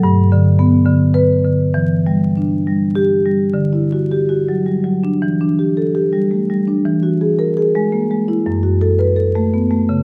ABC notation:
X:1
M:3/4
L:1/8
Q:1/4=109
K:Edor
V:1 name="Marimba"
z4 B2 | z4 G2 | z2 G z3 | z2 A z3 |
z2 _B z3 | z2 B z3 |]
V:2 name="Marimba"
G,, D, B, D,2 D, | E, G, D G,2 G, | (3D, E F- (3F F F, (3G, F, D | (3E, D G- (3G G G, (3A, G, D |
(3E, F ^G- (3G G ^G, (3_B, G, E | (3F,, F A- (3A A A, (3B, A, C, |]